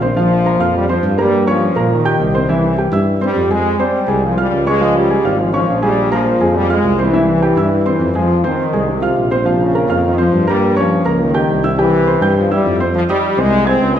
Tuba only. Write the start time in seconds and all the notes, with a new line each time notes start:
Already playing: A#1
0.59 F2
1.03 G2
1.76 A#2
2.19 C2
2.92 G2
3.35 F2
4.08 C2
4.51 C#2
5.24 G#1
5.67 A#1
6.40 F2
6.83 C2
7.56 G2
8.00 F2
8.72 C2
9.16 A#1
9.89 F2
10.32 G2
11.05 C#2
11.48 C2
12.21 G2
12.65 F2
13.37 C2
13.81 C#2